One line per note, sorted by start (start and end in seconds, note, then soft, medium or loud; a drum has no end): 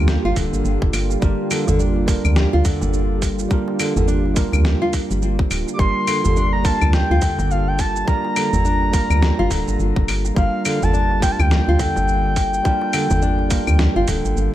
0.00 0.17 D2 loud
0.00 14.54 D3 medium
0.00 1.20 G3 medium
0.00 14.54 G3 medium
0.00 1.21 A#3 medium
0.00 14.54 A#3 medium
0.00 1.22 D4 medium
0.00 1.23 F4 medium
0.00 14.54 F4 medium
0.00 14.54 G4 medium
0.00 1.24 A#4 medium
0.08 0.24 G4 medium
0.08 snare medium
0.08 shaker soft
0.24 0.34 G1 medium
0.24 0.35 F4 loud
0.36 0.50 D1 medium
0.36 0.93 D3 medium
0.36 kick medium
0.36 open hi-hat loud
0.36 darbuka ka medium
0.36 shaker medium
0.53 0.62 G1 medium
0.53 darbuka ka soft
0.53 shaker soft
0.65 0.78 G1 medium
0.65 shaker soft
0.82 0.91 F1 loud
0.82 kick loud
0.93 1.17 G1 loud
0.93 open hi-hat medium
0.93 claves medium
0.93 shaker medium
1.10 darbuka ka medium
1.10 shaker soft
1.20 1.35 G1 loud
1.20 2.04 G3 medium
1.20 1.50 G3 loud
1.20 2.05 A#3 medium
1.20 2.05 D4 medium
1.20 2.06 F4 medium
1.20 kick loud
1.20 shaker soft
1.24 2.06 A#4 medium
1.51 1.66 D3 medium
1.51 open hi-hat loud
1.51 claves medium
1.51 shaker medium
1.67 2.19 G1 medium
1.67 1.78 D3 medium
1.67 darbuka dum loud
1.67 shaker medium
1.80 2.07 D4 medium
1.80 shaker soft
1.96 darbuka ka soft
2.06 3.47 G3 medium
2.06 3.47 A#3 medium
2.06 2.17 A#3 medium
2.06 3.48 D4 medium
2.06 3.49 F4 medium
2.06 kick loud
2.06 open hi-hat medium
2.06 shaker medium
2.10 3.49 A#4 medium
2.25 2.46 D2 loud
2.25 darbuka dum medium
2.25 claves medium
2.25 shaker soft
2.36 2.52 G4 medium
2.36 snare medium
2.36 shaker soft
2.53 2.63 D2 medium
2.53 2.64 F4 loud
2.53 darbuka tek soft
2.65 3.21 D3 medium
2.65 kick loud
2.65 open hi-hat medium
2.65 darbuka dum medium
2.65 shaker medium
2.81 3.47 G1 loud
2.81 darbuka ka soft
2.81 darbuka tek medium
2.81 shaker soft
2.93 shaker soft
3.22 kick medium
3.22 open hi-hat medium
3.22 shaker medium
3.39 darbuka ka soft
3.39 shaker soft
3.49 4.33 G3 medium
3.49 3.78 G3 medium
3.49 4.33 A#3 medium
3.49 4.34 D4 medium
3.49 4.34 F4 medium
3.49 kick loud
3.49 shaker soft
3.53 4.35 A#4 medium
3.68 darbuka tek medium
3.79 3.95 D3 medium
3.79 open hi-hat medium
3.79 claves medium
3.79 shaker medium
3.96 4.47 G1 medium
3.96 4.07 D3 medium
3.96 darbuka tek soft
3.96 darbuka dum medium
3.96 shaker soft
4.08 4.35 D4 medium
4.08 shaker soft
4.26 darbuka ka soft
4.26 darbuka tek soft
4.34 5.75 G3 medium
4.34 5.76 A#3 medium
4.34 4.46 A#3 medium
4.34 5.76 D4 medium
4.34 5.77 F4 medium
4.34 5.77 A#4 medium
4.34 kick loud
4.34 open hi-hat medium
4.34 shaker medium
4.52 4.74 D2 loud
4.52 darbuka dum medium
4.52 claves medium
4.52 shaker soft
4.65 4.81 G4 medium
4.65 snare medium
4.65 shaker soft
4.82 4.92 F4 loud
4.93 kick medium
4.93 open hi-hat medium
4.93 darbuka ka soft
4.93 shaker medium
5.10 5.47 G1 medium
5.10 5.17 G3 medium
5.10 darbuka ka soft
5.10 shaker soft
5.22 5.37 G3 medium
5.22 shaker soft
5.39 5.50 C4 medium
5.39 kick loud
5.51 5.64 D1 medium
5.51 open hi-hat medium
5.51 claves medium
5.51 shaker medium
5.67 darbuka ka medium
5.67 shaker soft
5.73 6.61 G3 medium
5.73 5.80 D6 medium
5.78 5.92 G1 loud
5.78 6.07 G3 medium
5.78 6.62 A#3 medium
5.78 6.62 D4 medium
5.78 6.63 F4 medium
5.78 6.63 A#4 medium
5.78 6.36 C6 loud
5.78 kick loud
5.78 shaker soft
6.08 6.23 D3 medium
6.08 open hi-hat medium
6.08 claves medium
6.08 shaker medium
6.24 6.76 G1 medium
6.24 6.35 D3 medium
6.24 darbuka dum medium
6.24 shaker soft
6.36 6.64 D4 medium
6.36 6.52 C6 loud
6.36 shaker soft
6.53 6.67 A#5 medium
6.53 darbuka ka soft
6.63 8.04 G3 medium
6.63 8.05 A#3 medium
6.63 6.75 A#3 medium
6.63 8.05 D4 medium
6.63 8.06 F4 medium
6.63 8.06 A#4 medium
6.63 6.94 A5 loud
6.63 kick loud
6.63 open hi-hat medium
6.63 shaker medium
6.81 7.03 D2 loud
6.81 darbuka dum medium
6.81 claves medium
6.81 shaker soft
6.93 7.10 G4 medium
6.93 7.52 G5 loud
6.93 snare medium
6.93 shaker soft
7.11 7.20 D2 medium
7.11 7.21 F4 loud
7.11 darbuka tek soft
7.22 7.78 D3 medium
7.22 kick medium
7.22 open hi-hat medium
7.22 darbuka dum medium
7.22 shaker medium
7.39 8.03 G1 loud
7.39 darbuka ka soft
7.39 darbuka tek medium
7.39 shaker soft
7.51 7.69 F5 medium
7.51 shaker soft
7.68 7.81 G5 medium
7.79 8.07 A5 loud
7.79 kick medium
7.79 open hi-hat medium
7.79 shaker medium
7.96 darbuka ka medium
7.96 shaker soft
8.05 8.89 G3 medium
8.05 8.35 G3 loud
8.05 8.90 A#3 medium
8.05 8.91 D4 medium
8.05 8.91 F4 medium
8.05 9.75 A#5 loud
8.05 kick loud
8.05 shaker soft
8.09 8.92 A#4 medium
8.25 darbuka tek medium
8.36 8.52 D3 medium
8.36 open hi-hat loud
8.36 claves medium
8.36 shaker medium
8.53 9.04 G1 medium
8.53 8.64 D3 medium
8.53 darbuka tek soft
8.53 darbuka dum loud
8.53 shaker soft
8.65 8.92 D4 medium
8.65 shaker soft
8.82 darbuka ka soft
8.82 darbuka tek soft
8.91 10.32 G3 medium
8.91 10.33 A#3 medium
8.91 9.03 A#3 medium
8.91 10.33 D4 medium
8.91 10.34 F4 medium
8.91 10.34 A#4 medium
8.91 kick loud
8.91 open hi-hat medium
8.91 shaker medium
9.10 9.31 D2 loud
9.10 darbuka dum medium
9.10 claves medium
9.10 shaker soft
9.22 9.38 G4 medium
9.22 snare medium
9.22 shaker soft
9.39 9.48 G1 medium
9.39 9.50 F4 loud
9.51 9.64 D1 medium
9.51 10.07 D3 medium
9.51 kick medium
9.51 open hi-hat loud
9.51 darbuka ka soft
9.51 shaker medium
9.68 9.77 G1 medium
9.68 darbuka ka medium
9.68 shaker soft
9.79 9.93 G1 medium
9.79 shaker soft
9.96 10.05 F1 loud
9.96 kick loud
10.08 10.32 G1 medium
10.08 open hi-hat medium
10.08 claves medium
10.08 shaker medium
10.25 darbuka ka medium
10.25 shaker soft
10.35 10.50 G1 loud
10.35 11.19 G3 medium
10.35 10.64 G3 medium
10.35 11.19 A#3 medium
10.35 11.19 D4 medium
10.35 11.20 F4 medium
10.35 11.20 A#4 medium
10.35 10.63 F5 loud
10.35 kick loud
10.35 shaker soft
10.65 10.81 D3 medium
10.65 10.85 F5 loud
10.65 open hi-hat medium
10.65 claves medium
10.65 shaker medium
10.82 11.33 G1 medium
10.82 10.93 D3 medium
10.82 11.22 A5 loud
10.82 darbuka dum medium
10.82 shaker soft
10.94 11.21 D4 medium
10.94 shaker soft
11.11 darbuka ka medium
11.20 12.61 G3 medium
11.20 12.62 A#3 medium
11.20 11.32 A#3 medium
11.20 12.62 D4 medium
11.20 12.63 F4 medium
11.20 12.63 A#4 medium
11.20 11.33 G5 medium
11.20 kick loud
11.20 open hi-hat loud
11.20 shaker medium
11.31 11.42 A5 medium
11.39 11.60 D2 loud
11.39 14.37 G5 loud
11.39 darbuka dum medium
11.39 claves medium
11.39 shaker soft
11.51 11.67 G4 medium
11.51 snare medium
11.51 shaker soft
11.68 11.77 D2 medium
11.68 11.79 F4 loud
11.68 darbuka tek soft
11.79 12.36 D3 medium
11.79 kick medium
11.79 open hi-hat medium
11.79 darbuka dum loud
11.79 shaker medium
11.96 12.61 G1 loud
11.96 darbuka ka medium
11.96 darbuka tek medium
11.96 shaker soft
12.08 shaker soft
12.36 kick medium
12.36 open hi-hat medium
12.36 shaker medium
12.53 darbuka ka medium
12.53 shaker soft
12.63 13.47 G3 medium
12.63 12.93 G3 loud
12.63 13.47 A#3 medium
12.63 13.48 D4 medium
12.63 13.48 F4 medium
12.63 kick loud
12.63 shaker soft
12.67 13.49 A#4 medium
12.81 darbuka tek medium
12.93 13.09 D3 medium
12.93 open hi-hat loud
12.93 claves medium
12.93 shaker medium
13.10 13.62 G1 medium
13.10 13.21 D3 medium
13.10 darbuka tek soft
13.10 darbuka dum loud
13.10 shaker soft
13.22 13.50 D4 medium
13.22 shaker soft
13.39 darbuka ka medium
13.39 darbuka tek soft
13.49 14.54 G3 medium
13.49 14.54 A#3 medium
13.49 13.60 A#3 medium
13.49 14.54 D4 medium
13.49 14.54 F4 medium
13.49 kick loud
13.49 open hi-hat loud
13.49 shaker medium
13.53 14.54 A#4 medium
13.67 13.88 D2 loud
13.67 darbuka dum medium
13.67 claves medium
13.67 shaker soft
13.79 13.95 G4 medium
13.79 snare medium
13.79 shaker soft
13.96 14.05 G1 medium
13.96 14.07 F4 loud
14.07 14.21 D1 medium
14.07 14.54 D3 medium
14.07 kick medium
14.07 open hi-hat loud
14.07 darbuka ka soft
14.07 shaker medium
14.25 14.34 G1 medium
14.25 darbuka ka medium
14.25 shaker soft
14.36 14.49 G1 medium
14.36 shaker soft